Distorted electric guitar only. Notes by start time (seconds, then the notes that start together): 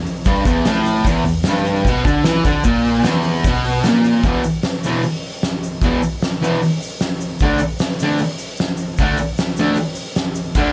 0.26 G2
0.45 E2
0.66 A2
1.06 E2
1.25 E2
1.47 G2
1.88 B2
2.05 D3
2.25 E3
2.45 D3
2.65 A#2
3.03 E2
3.46 B2
3.86 A#2
4.24 E2 B2 E3
4.85 E2 B2 E3
5.83 E2 B2 E3
6.42 E2 B2 E3
7.42 D3 A3 D4
8.02 D3 A3 D4
9.00 D3 A3 D4
9.59 D3 A3 D4
10.57 D3 A3 D4